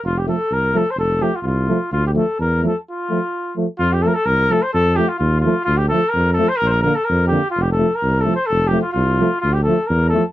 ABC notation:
X:1
M:2/4
L:1/16
Q:"Swing 16ths" 1/4=128
K:F
V:1 name="Trumpet"
F G A2 B2 A c | A2 G F/2 F/2 F4 | F G A2 B2 A z | F6 z2 |
F G A/2 B/2 A B2 A c | A2 G F F2 F2 | F G A2 B2 A c | B/2 c/2 B B A B2 G2 |
F G A2 B2 A c | A2 G F F4 | F G A2 B2 A z |]
V:2 name="Euphonium"
z2 A,2 z2 A,2 | z2 A,2 z2 A,2 | z2 A,2 z2 A,2 | z2 A,2 z2 A,2 |
z2 A,2 z2 A,2 | z2 A,2 z2 A,2 | z2 A,2 z2 A,2 | z2 B,2 z2 B,2 |
z2 A,2 z2 A,2 | z2 A,2 z2 A,2 | z2 A,2 z2 A,2 |]
V:3 name="Euphonium" clef=bass
z2 F,2 z2 F,2 | z2 F,2 z2 F,2 | z2 F,2 z2 F,2 | z2 F,2 z2 F,2 |
z2 F,2 z2 F,2 | z2 F,2 z2 F,2 | z2 F,2 z2 F,2 | z2 D,2 z2 D,2 |
z2 F,2 z2 F,2 | z2 F,2 z2 F,2 | z2 F,2 z2 F,2 |]
V:4 name="Tuba" clef=bass
F,,,4 C,,4 | F,,,4 C,,4 | D,,4 E,,4 | z8 |
F,,4 C,,4 | F,,4 _E,,4 | D,,4 F,,4 | B,,,4 F,,4 |
F,,,4 C,,4 | F,,,4 C,,4 | D,,4 E,,4 |]